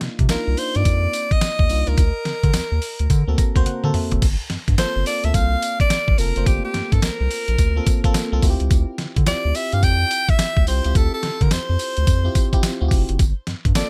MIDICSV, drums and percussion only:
0, 0, Header, 1, 2, 480
1, 0, Start_track
1, 0, Tempo, 560748
1, 1692, Time_signature, 4, 2, 24, 8
1, 11894, End_track
2, 0, Start_track
2, 0, Title_t, "Drums"
2, 8, Note_on_c, 9, 38, 70
2, 9, Note_on_c, 9, 42, 56
2, 94, Note_off_c, 9, 38, 0
2, 94, Note_off_c, 9, 42, 0
2, 162, Note_on_c, 9, 42, 60
2, 163, Note_on_c, 9, 36, 90
2, 247, Note_off_c, 9, 42, 0
2, 247, Note_on_c, 9, 42, 80
2, 249, Note_off_c, 9, 36, 0
2, 249, Note_on_c, 9, 38, 108
2, 249, Note_on_c, 9, 54, 93
2, 332, Note_off_c, 9, 42, 0
2, 334, Note_off_c, 9, 38, 0
2, 335, Note_off_c, 9, 54, 0
2, 490, Note_on_c, 9, 46, 62
2, 492, Note_on_c, 9, 54, 73
2, 576, Note_off_c, 9, 46, 0
2, 577, Note_off_c, 9, 54, 0
2, 640, Note_on_c, 9, 42, 62
2, 726, Note_off_c, 9, 42, 0
2, 730, Note_on_c, 9, 36, 85
2, 730, Note_on_c, 9, 42, 73
2, 730, Note_on_c, 9, 54, 72
2, 815, Note_off_c, 9, 54, 0
2, 816, Note_off_c, 9, 36, 0
2, 816, Note_off_c, 9, 42, 0
2, 971, Note_on_c, 9, 42, 76
2, 973, Note_on_c, 9, 54, 77
2, 1056, Note_off_c, 9, 42, 0
2, 1058, Note_off_c, 9, 54, 0
2, 1123, Note_on_c, 9, 36, 98
2, 1126, Note_on_c, 9, 42, 52
2, 1208, Note_off_c, 9, 36, 0
2, 1210, Note_on_c, 9, 38, 122
2, 1210, Note_on_c, 9, 54, 100
2, 1211, Note_off_c, 9, 42, 0
2, 1211, Note_on_c, 9, 42, 86
2, 1296, Note_off_c, 9, 38, 0
2, 1296, Note_off_c, 9, 42, 0
2, 1296, Note_off_c, 9, 54, 0
2, 1363, Note_on_c, 9, 36, 97
2, 1448, Note_off_c, 9, 36, 0
2, 1450, Note_on_c, 9, 46, 67
2, 1452, Note_on_c, 9, 54, 72
2, 1536, Note_off_c, 9, 46, 0
2, 1538, Note_off_c, 9, 54, 0
2, 1600, Note_on_c, 9, 42, 55
2, 1686, Note_off_c, 9, 42, 0
2, 1691, Note_on_c, 9, 42, 82
2, 1691, Note_on_c, 9, 54, 65
2, 1692, Note_on_c, 9, 36, 115
2, 1776, Note_off_c, 9, 54, 0
2, 1777, Note_off_c, 9, 42, 0
2, 1778, Note_off_c, 9, 36, 0
2, 1929, Note_on_c, 9, 38, 67
2, 1930, Note_on_c, 9, 42, 55
2, 2015, Note_off_c, 9, 38, 0
2, 2015, Note_off_c, 9, 42, 0
2, 2084, Note_on_c, 9, 36, 83
2, 2084, Note_on_c, 9, 42, 59
2, 2169, Note_off_c, 9, 42, 0
2, 2169, Note_on_c, 9, 42, 78
2, 2170, Note_off_c, 9, 36, 0
2, 2171, Note_on_c, 9, 38, 116
2, 2172, Note_on_c, 9, 54, 100
2, 2255, Note_off_c, 9, 42, 0
2, 2257, Note_off_c, 9, 38, 0
2, 2257, Note_off_c, 9, 54, 0
2, 2412, Note_on_c, 9, 46, 63
2, 2413, Note_on_c, 9, 54, 69
2, 2497, Note_off_c, 9, 46, 0
2, 2499, Note_off_c, 9, 54, 0
2, 2562, Note_on_c, 9, 42, 60
2, 2648, Note_off_c, 9, 42, 0
2, 2652, Note_on_c, 9, 36, 84
2, 2652, Note_on_c, 9, 54, 72
2, 2653, Note_on_c, 9, 42, 70
2, 2738, Note_off_c, 9, 36, 0
2, 2738, Note_off_c, 9, 42, 0
2, 2738, Note_off_c, 9, 54, 0
2, 2894, Note_on_c, 9, 36, 100
2, 2894, Note_on_c, 9, 42, 81
2, 2895, Note_on_c, 9, 54, 75
2, 2979, Note_off_c, 9, 42, 0
2, 2980, Note_off_c, 9, 36, 0
2, 2981, Note_off_c, 9, 54, 0
2, 3044, Note_on_c, 9, 36, 94
2, 3048, Note_on_c, 9, 42, 58
2, 3130, Note_off_c, 9, 36, 0
2, 3133, Note_off_c, 9, 42, 0
2, 3133, Note_on_c, 9, 42, 93
2, 3134, Note_on_c, 9, 48, 65
2, 3218, Note_off_c, 9, 42, 0
2, 3219, Note_off_c, 9, 48, 0
2, 3284, Note_on_c, 9, 47, 67
2, 3370, Note_off_c, 9, 47, 0
2, 3372, Note_on_c, 9, 46, 72
2, 3373, Note_on_c, 9, 45, 100
2, 3457, Note_off_c, 9, 46, 0
2, 3459, Note_off_c, 9, 45, 0
2, 3522, Note_on_c, 9, 42, 58
2, 3525, Note_on_c, 9, 43, 96
2, 3608, Note_off_c, 9, 42, 0
2, 3610, Note_off_c, 9, 43, 0
2, 3612, Note_on_c, 9, 54, 73
2, 3613, Note_on_c, 9, 36, 123
2, 3613, Note_on_c, 9, 42, 77
2, 3613, Note_on_c, 9, 49, 102
2, 3698, Note_off_c, 9, 42, 0
2, 3698, Note_off_c, 9, 49, 0
2, 3698, Note_off_c, 9, 54, 0
2, 3699, Note_off_c, 9, 36, 0
2, 3850, Note_on_c, 9, 38, 67
2, 3851, Note_on_c, 9, 42, 57
2, 3936, Note_off_c, 9, 38, 0
2, 3936, Note_off_c, 9, 42, 0
2, 4005, Note_on_c, 9, 36, 92
2, 4005, Note_on_c, 9, 42, 61
2, 4090, Note_off_c, 9, 42, 0
2, 4091, Note_off_c, 9, 36, 0
2, 4091, Note_on_c, 9, 42, 78
2, 4093, Note_on_c, 9, 38, 112
2, 4094, Note_on_c, 9, 54, 94
2, 4177, Note_off_c, 9, 42, 0
2, 4179, Note_off_c, 9, 38, 0
2, 4179, Note_off_c, 9, 54, 0
2, 4332, Note_on_c, 9, 46, 63
2, 4333, Note_on_c, 9, 54, 72
2, 4417, Note_off_c, 9, 46, 0
2, 4419, Note_off_c, 9, 54, 0
2, 4482, Note_on_c, 9, 42, 61
2, 4568, Note_off_c, 9, 42, 0
2, 4572, Note_on_c, 9, 54, 74
2, 4573, Note_on_c, 9, 36, 95
2, 4573, Note_on_c, 9, 42, 76
2, 4658, Note_off_c, 9, 36, 0
2, 4658, Note_off_c, 9, 42, 0
2, 4658, Note_off_c, 9, 54, 0
2, 4814, Note_on_c, 9, 42, 79
2, 4816, Note_on_c, 9, 54, 71
2, 4899, Note_off_c, 9, 42, 0
2, 4901, Note_off_c, 9, 54, 0
2, 4964, Note_on_c, 9, 36, 96
2, 4967, Note_on_c, 9, 42, 55
2, 5050, Note_off_c, 9, 36, 0
2, 5052, Note_on_c, 9, 38, 122
2, 5052, Note_on_c, 9, 54, 104
2, 5053, Note_off_c, 9, 42, 0
2, 5053, Note_on_c, 9, 42, 92
2, 5138, Note_off_c, 9, 38, 0
2, 5138, Note_off_c, 9, 42, 0
2, 5138, Note_off_c, 9, 54, 0
2, 5204, Note_on_c, 9, 36, 99
2, 5289, Note_off_c, 9, 36, 0
2, 5291, Note_on_c, 9, 46, 66
2, 5293, Note_on_c, 9, 54, 75
2, 5377, Note_off_c, 9, 46, 0
2, 5379, Note_off_c, 9, 54, 0
2, 5443, Note_on_c, 9, 42, 56
2, 5529, Note_off_c, 9, 42, 0
2, 5533, Note_on_c, 9, 36, 118
2, 5533, Note_on_c, 9, 42, 79
2, 5533, Note_on_c, 9, 54, 66
2, 5618, Note_off_c, 9, 54, 0
2, 5619, Note_off_c, 9, 36, 0
2, 5619, Note_off_c, 9, 42, 0
2, 5770, Note_on_c, 9, 38, 67
2, 5771, Note_on_c, 9, 42, 58
2, 5856, Note_off_c, 9, 38, 0
2, 5857, Note_off_c, 9, 42, 0
2, 5925, Note_on_c, 9, 36, 86
2, 5926, Note_on_c, 9, 42, 56
2, 6011, Note_off_c, 9, 36, 0
2, 6011, Note_off_c, 9, 42, 0
2, 6011, Note_on_c, 9, 42, 79
2, 6013, Note_on_c, 9, 38, 114
2, 6014, Note_on_c, 9, 54, 93
2, 6097, Note_off_c, 9, 42, 0
2, 6099, Note_off_c, 9, 38, 0
2, 6099, Note_off_c, 9, 54, 0
2, 6253, Note_on_c, 9, 46, 63
2, 6255, Note_on_c, 9, 54, 67
2, 6339, Note_off_c, 9, 46, 0
2, 6340, Note_off_c, 9, 54, 0
2, 6402, Note_on_c, 9, 42, 63
2, 6488, Note_off_c, 9, 42, 0
2, 6492, Note_on_c, 9, 36, 81
2, 6492, Note_on_c, 9, 42, 72
2, 6492, Note_on_c, 9, 54, 73
2, 6577, Note_off_c, 9, 54, 0
2, 6578, Note_off_c, 9, 36, 0
2, 6578, Note_off_c, 9, 42, 0
2, 6732, Note_on_c, 9, 42, 81
2, 6734, Note_on_c, 9, 36, 108
2, 6734, Note_on_c, 9, 54, 78
2, 6818, Note_off_c, 9, 42, 0
2, 6819, Note_off_c, 9, 36, 0
2, 6820, Note_off_c, 9, 54, 0
2, 6884, Note_on_c, 9, 36, 100
2, 6885, Note_on_c, 9, 42, 58
2, 6969, Note_off_c, 9, 36, 0
2, 6971, Note_off_c, 9, 42, 0
2, 6971, Note_on_c, 9, 38, 122
2, 6971, Note_on_c, 9, 54, 103
2, 6972, Note_on_c, 9, 42, 88
2, 7057, Note_off_c, 9, 38, 0
2, 7057, Note_off_c, 9, 42, 0
2, 7057, Note_off_c, 9, 54, 0
2, 7211, Note_on_c, 9, 46, 68
2, 7212, Note_on_c, 9, 36, 98
2, 7213, Note_on_c, 9, 54, 73
2, 7297, Note_off_c, 9, 36, 0
2, 7297, Note_off_c, 9, 46, 0
2, 7299, Note_off_c, 9, 54, 0
2, 7362, Note_on_c, 9, 42, 58
2, 7447, Note_off_c, 9, 42, 0
2, 7452, Note_on_c, 9, 42, 74
2, 7452, Note_on_c, 9, 54, 70
2, 7453, Note_on_c, 9, 36, 118
2, 7538, Note_off_c, 9, 42, 0
2, 7538, Note_off_c, 9, 54, 0
2, 7539, Note_off_c, 9, 36, 0
2, 7689, Note_on_c, 9, 38, 69
2, 7690, Note_on_c, 9, 42, 54
2, 7775, Note_off_c, 9, 38, 0
2, 7776, Note_off_c, 9, 42, 0
2, 7844, Note_on_c, 9, 42, 59
2, 7845, Note_on_c, 9, 36, 85
2, 7930, Note_off_c, 9, 42, 0
2, 7930, Note_on_c, 9, 42, 86
2, 7931, Note_off_c, 9, 36, 0
2, 7932, Note_on_c, 9, 38, 111
2, 7932, Note_on_c, 9, 54, 89
2, 8015, Note_off_c, 9, 42, 0
2, 8017, Note_off_c, 9, 38, 0
2, 8018, Note_off_c, 9, 54, 0
2, 8172, Note_on_c, 9, 46, 59
2, 8174, Note_on_c, 9, 54, 73
2, 8258, Note_off_c, 9, 46, 0
2, 8259, Note_off_c, 9, 54, 0
2, 8323, Note_on_c, 9, 42, 57
2, 8409, Note_off_c, 9, 42, 0
2, 8412, Note_on_c, 9, 42, 76
2, 8412, Note_on_c, 9, 54, 72
2, 8413, Note_on_c, 9, 36, 85
2, 8497, Note_off_c, 9, 54, 0
2, 8498, Note_off_c, 9, 42, 0
2, 8499, Note_off_c, 9, 36, 0
2, 8652, Note_on_c, 9, 42, 81
2, 8654, Note_on_c, 9, 54, 73
2, 8738, Note_off_c, 9, 42, 0
2, 8739, Note_off_c, 9, 54, 0
2, 8805, Note_on_c, 9, 36, 99
2, 8807, Note_on_c, 9, 42, 55
2, 8890, Note_off_c, 9, 36, 0
2, 8892, Note_on_c, 9, 38, 118
2, 8892, Note_on_c, 9, 54, 102
2, 8893, Note_off_c, 9, 42, 0
2, 8893, Note_on_c, 9, 42, 99
2, 8978, Note_off_c, 9, 38, 0
2, 8978, Note_off_c, 9, 42, 0
2, 8978, Note_off_c, 9, 54, 0
2, 9045, Note_on_c, 9, 36, 102
2, 9131, Note_off_c, 9, 36, 0
2, 9133, Note_on_c, 9, 46, 65
2, 9135, Note_on_c, 9, 54, 70
2, 9218, Note_off_c, 9, 46, 0
2, 9220, Note_off_c, 9, 54, 0
2, 9283, Note_on_c, 9, 42, 60
2, 9368, Note_off_c, 9, 42, 0
2, 9375, Note_on_c, 9, 36, 115
2, 9375, Note_on_c, 9, 42, 78
2, 9375, Note_on_c, 9, 54, 71
2, 9460, Note_off_c, 9, 54, 0
2, 9461, Note_off_c, 9, 36, 0
2, 9461, Note_off_c, 9, 42, 0
2, 9612, Note_on_c, 9, 38, 71
2, 9613, Note_on_c, 9, 42, 61
2, 9698, Note_off_c, 9, 38, 0
2, 9698, Note_off_c, 9, 42, 0
2, 9766, Note_on_c, 9, 36, 84
2, 9767, Note_on_c, 9, 42, 60
2, 9851, Note_off_c, 9, 42, 0
2, 9851, Note_on_c, 9, 42, 84
2, 9852, Note_off_c, 9, 36, 0
2, 9853, Note_on_c, 9, 38, 111
2, 9854, Note_on_c, 9, 54, 95
2, 9937, Note_off_c, 9, 42, 0
2, 9939, Note_off_c, 9, 38, 0
2, 9939, Note_off_c, 9, 54, 0
2, 10094, Note_on_c, 9, 46, 66
2, 10095, Note_on_c, 9, 54, 73
2, 10179, Note_off_c, 9, 46, 0
2, 10181, Note_off_c, 9, 54, 0
2, 10243, Note_on_c, 9, 42, 61
2, 10329, Note_off_c, 9, 42, 0
2, 10333, Note_on_c, 9, 42, 74
2, 10333, Note_on_c, 9, 54, 76
2, 10334, Note_on_c, 9, 36, 93
2, 10418, Note_off_c, 9, 54, 0
2, 10419, Note_off_c, 9, 36, 0
2, 10419, Note_off_c, 9, 42, 0
2, 10573, Note_on_c, 9, 42, 81
2, 10574, Note_on_c, 9, 36, 103
2, 10574, Note_on_c, 9, 54, 75
2, 10658, Note_off_c, 9, 42, 0
2, 10660, Note_off_c, 9, 36, 0
2, 10660, Note_off_c, 9, 54, 0
2, 10724, Note_on_c, 9, 36, 96
2, 10727, Note_on_c, 9, 42, 55
2, 10810, Note_off_c, 9, 36, 0
2, 10811, Note_on_c, 9, 54, 102
2, 10812, Note_off_c, 9, 42, 0
2, 10812, Note_on_c, 9, 38, 127
2, 10812, Note_on_c, 9, 42, 96
2, 10897, Note_off_c, 9, 38, 0
2, 10897, Note_off_c, 9, 54, 0
2, 10898, Note_off_c, 9, 42, 0
2, 11052, Note_on_c, 9, 36, 104
2, 11052, Note_on_c, 9, 46, 71
2, 11054, Note_on_c, 9, 54, 74
2, 11138, Note_off_c, 9, 36, 0
2, 11138, Note_off_c, 9, 46, 0
2, 11140, Note_off_c, 9, 54, 0
2, 11203, Note_on_c, 9, 42, 61
2, 11289, Note_off_c, 9, 42, 0
2, 11293, Note_on_c, 9, 42, 78
2, 11293, Note_on_c, 9, 54, 70
2, 11294, Note_on_c, 9, 36, 122
2, 11378, Note_off_c, 9, 54, 0
2, 11379, Note_off_c, 9, 36, 0
2, 11379, Note_off_c, 9, 42, 0
2, 11530, Note_on_c, 9, 38, 65
2, 11530, Note_on_c, 9, 42, 58
2, 11615, Note_off_c, 9, 38, 0
2, 11616, Note_off_c, 9, 42, 0
2, 11685, Note_on_c, 9, 36, 87
2, 11685, Note_on_c, 9, 42, 58
2, 11771, Note_off_c, 9, 36, 0
2, 11771, Note_off_c, 9, 42, 0
2, 11771, Note_on_c, 9, 42, 76
2, 11773, Note_on_c, 9, 38, 112
2, 11774, Note_on_c, 9, 54, 93
2, 11857, Note_off_c, 9, 42, 0
2, 11859, Note_off_c, 9, 38, 0
2, 11859, Note_off_c, 9, 54, 0
2, 11894, End_track
0, 0, End_of_file